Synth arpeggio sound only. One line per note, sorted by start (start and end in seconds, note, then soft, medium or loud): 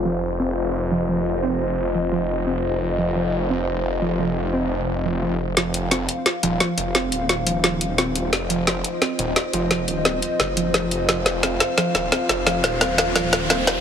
0.05 0.15 F3 medium
0.40 0.54 C4 medium
0.91 1.01 F3 medium
1.09 1.18 F3 medium
1.43 1.58 C4 medium
1.95 2.05 F3 medium
2.12 2.22 F3 medium
2.47 2.61 C4 medium
2.98 3.08 F3 medium
3.16 3.25 F3 medium
3.50 3.65 C4 medium
4.02 4.11 F3 medium
4.19 4.29 F3 medium
4.54 4.68 C4 medium
5.05 5.11 F3 medium
5.22 5.28 F3 medium
5.57 5.67 F3 medium
5.91 6.06 C4 medium
6.43 6.53 F3 medium
6.60 6.70 F3 medium
6.95 7.09 C4 medium
7.47 7.56 F3 medium
7.64 7.74 F3 medium
7.98 8.13 C4 medium
8.50 8.60 F3 medium
8.67 8.77 F3 medium
9.02 9.16 C4 medium
9.53 9.63 F3 medium
9.71 9.80 F3 medium
10.05 10.20 C4 medium
10.57 10.67 F3 medium
10.74 10.84 F3 medium
11.09 11.18 F3 medium
11.43 11.53 C4 medium
11.78 11.87 F3 medium
12.12 12.22 C4 medium
12.47 12.56 F3 medium
12.81 12.91 C4 medium
13.16 13.25 F3 medium
13.50 13.60 C4 medium